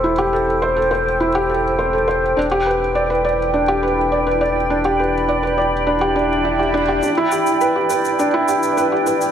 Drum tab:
SH |----------------|----------------|----------------|x-xxx-xxx-xxx-xx|